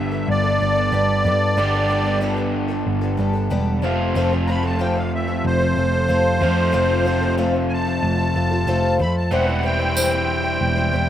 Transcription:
Already playing: G1 G2 D3 G3 B3 D4 G4 A4 E5
0.12 B3 D4 A4
0.28 G1 D5
0.43 B3 D4 A4
0.60 G1 G3 B3 D4 A4
0.75 B3 D4 A4
0.92 G1 G3 B3 D4 A4
1.24 G2 G3 B3 D4 A4
1.57 G1 G2 D3 G3 B3 D4 G4 A4
1.73 B3 D4 A4
1.89 G3 B3 D4 A4
2.04 B3 D4 A4
2.21 G3 B3 D4 A4
2.36 B3 D4 A4
2.68 B3 D4 A4
2.87 G1
3.01 B3 D4 A4
3.17 G1 G3 B3 D4 A4
3.33 B3 D4 A4
3.50 E1 G3 B3 D4 A4
3.82 F1 F2 C3 F3 A3 C4 F4 A4
4.15 F1 F3 A3 C4 F4 A4
4.32 C4 F4 A4
4.47 A3 C4 F4 A#5
4.51 A4 B5
4.63 C4 F4 A4 A5
4.79 F3 A3 C4 F4 A4 G5
4.95 C4 F4 A4 F5
5.15 E5
5.28 C4 F4 A4
5.45 F1 C5
5.60 C4 F4 A4
5.76 F1 A3 C4 F4 A4
5.92 C4 F4 A4
6.08 F1 F3 A3 C4 F4 A4
6.41 F2 C3 F3 A3 C4 F4 A4
6.72 F1 F3 A3 C4 F4 A4
7.05 A3 C4 F4 A4
7.21 C4 F4 A4
7.38 F3 A3 C4 F4 A4
7.53 C4 F4 A4
7.69 G#5
7.73 A5
7.85 C4 F4 A4
8.03 F1
8.18 C4 F4 A4
8.34 F1 A3 C4 F4 A4
8.51 C4 F4 A4
8.67 F1 F3 A3 C4 F4 A4
8.98 F2 A3 C4 F4 A4 B5
9.17 A5
9.31 E1 E3 G3 C4 E4 C5 F#5
9.47 C4 E4 C5
9.63 G3 C4 E4 C5 G5
9.79 C4 E4 C5
9.95 E3 G3 C4 E4 C5, tambourine
10.11 C4 E4 C5
10.44 C4 E4 C5
10.61 E1
10.76 C4 E4 C5
10.92 E1 G3 C4 E4 C5

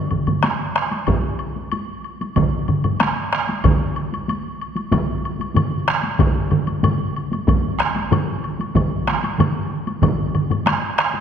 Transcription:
0.11 taiko low-mid, taiko mid, high woodblock
0.27 taiko low-mid, taiko mid, taiko high, high woodblock
0.43 taiko rim, taiko high, high woodblock
0.75 taiko rim, high woodblock
0.91 taiko high, high woodblock
1.07 taiko, taiko low-mid, taiko mid, taiko high, high woodblock
1.39 high woodblock
1.56 taiko high
1.72 taiko high, high woodblock
2.04 high woodblock
2.21 taiko high, high woodblock
2.36 taiko, taiko low-mid, taiko mid, taiko high, high woodblock
2.68 taiko low-mid, taiko mid, high woodblock
2.84 taiko low-mid, taiko mid, taiko high, high woodblock
3.00 taiko rim, taiko high, high woodblock
3.33 taiko rim, high woodblock
3.48 taiko high, high woodblock
3.64 taiko, taiko low-mid, taiko mid, taiko high, high woodblock
3.96 high woodblock
4.12 taiko high, high woodblock
4.28 taiko high, high woodblock
4.61 high woodblock
4.76 taiko high, high woodblock
4.91 taiko, taiko low-mid, taiko mid, taiko high, high woodblock
5.25 high woodblock
5.40 taiko high, high woodblock
5.55 taiko low-mid, taiko mid, taiko high, high woodblock
5.88 taiko rim, high woodblock
6.03 taiko high, high woodblock
6.19 taiko, taiko low-mid, taiko mid, taiko high, high woodblock
6.51 taiko low-mid, taiko mid, high woodblock
6.67 taiko high, high woodblock
6.83 taiko low-mid, taiko mid, taiko high, high woodblock
7.16 high woodblock
7.32 taiko high, high woodblock
7.47 taiko, taiko low-mid, taiko mid, taiko high, high woodblock
7.79 taiko rim
7.96 taiko high, high woodblock
8.11 taiko low-mid, taiko mid, taiko high, high woodblock
8.44 high woodblock
8.60 taiko high, high woodblock
8.75 taiko, taiko low-mid, taiko mid, taiko high, high woodblock
9.07 taiko rim, taiko high, high woodblock
9.24 taiko high, high woodblock
9.38 taiko low-mid, taiko mid, taiko high, high woodblock
9.87 taiko high, high woodblock
10.02 taiko, taiko low-mid, taiko mid, taiko high, high woodblock
10.34 taiko low-mid, taiko mid, high woodblock
10.50 taiko low-mid, taiko mid, taiko high, high woodblock
10.66 taiko rim, taiko high, high woodblock
10.98 taiko rim, high woodblock
11.14 taiko high

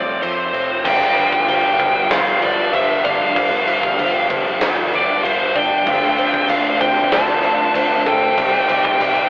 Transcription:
Already playing: C2 F2 C3 F3 A3 C4 F4 D5 E5
0.21 F2 C3 F3 A3 C4 F4 C5, ride
0.53 F1 C4, ride
0.84 G1 G2 D3 F3 G3 B3 D4 G4 G5, kick, crash
1.16 D3 F3 G3, crash
1.32 kick
1.47 G1 G2 D3 F3 G3 G5, crash
1.79 G1 D3 F3 G3, kick, crash
2.10 G1 G2 D3 F3 G3 B3 D4 F5, snare, crash
2.42 D3 F3 G3 D5, crash
2.73 G1 G2 D3 F3 G3 E5, crash
3.04 G1 D3 G3 D4 F5, kick, crash
3.35 G1 G2 D3 F3 G3 B3 D4, kick, crash
3.67 G1 D3 F3 G3, crash
3.83 kick, snare
3.99 G1 G2 D3 F3 G3, crash
4.29 G1 D3 F3 G3, kick, crash
4.61 G1 G2 D3 F3 G3 B3 D4, snare, crash
4.93 D3 F3 G3 D5, crash
5.23 G1 G2 D3 F3 G3 C5, crash
5.55 G1 D3 G3 D4 G5, kick, crash
5.86 D2 D3 F3 A3 D4 F4, kick, tambourine, crash
6.17 A3 C4 D4, tambourine, crash
6.33 kick, tambourine
6.48 D2 D3 F3 A3 D4 F5, tambourine, crash
6.80 D2 A3 C4 D4 G5, kick, tambourine, crash
6.95 tambourine
7.11 D2 D3 F3 A3 D4 A5, snare, crash
7.43 F3 A3 D4, tambourine, crash
7.74 D2 D3 A3 C4 D4 A5, tambourine, crash
8.05 D2 A3 D4 A4 G5, kick, crash
8.22 tambourine
8.36 C2 C3 D#3 G3 C4 D#4, kick, tambourine, crash
8.40 G4
8.54 tambourine
8.68 C2 G3 C4, tambourine, crash
8.85 kick, tambourine
8.99 C2 C3 G3 C4, tambourine, crash
9.16 tambourine

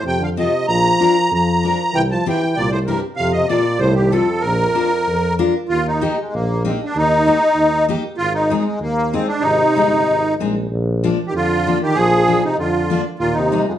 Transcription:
0.04 F2 C3 G5
0.20 D3 F5
0.37 C3 C4 F4 A4 D#5
0.68 A#1 F3 A#5
1.00 D4 F4 A#4
1.31 F2 F3 A#5
1.64 D4 F4 A#4
1.93 C2 E3 G5
2.11 F3 A5
2.26 E3 C4 E4 G4 G5
2.57 C2 A#2 D5
2.71 A2 C5
2.87 G2 C4 E4 G4 A#4
3.16 F2 C3 F5
3.32 C3 D#5
3.48 A#2 C4 F4 A4 D5
3.79 C2 A2 C5
3.95 D#2 G4
4.10 F2 C4 F4 A4
4.41 A#1 A#4
4.45 F2
4.75 D4 F4 A#4
5.07 F2
5.39 D4 F4 A#4
5.69 D#2 F4
5.87 D#4
6.01 A#3 D#4 G4
6.20 G#3
6.33 A#1 A#3
6.65 A#3 C4 D#4 G4
6.84 D4
6.95 D#2 D#4
7.27 A#3 D#4 G4
7.56 D#2
7.89 A#3 D#4 G4
8.18 G#1 F4
8.34 D#4
8.50 G#3 C4 D#4
8.62 G#3
8.80 D#2 A#3
9.12 G#3 C4 D#4
9.27 D4
9.40 G#1 C3 D#4
9.76 G1 G#3 C4 D#4
10.07 G#1
10.39 A#1 G#3 C4 D#4
10.70 A#1
11.04 F3 A#3 D4
11.27 D#3 G4
11.33 F2 D3 F4
11.66 F3 A#3 D4
11.81 D#3 G4
11.95 A#1 F3 G#4
12.27 F3 A#3 D4
12.44 C3 D#4
12.58 F2 D3 F4
12.90 F3 A#3 D4
13.19 D#2 A#2 F4
13.33 D#4
13.37 C3
13.52 G3 A#3 D#4
13.66 F2 G#3

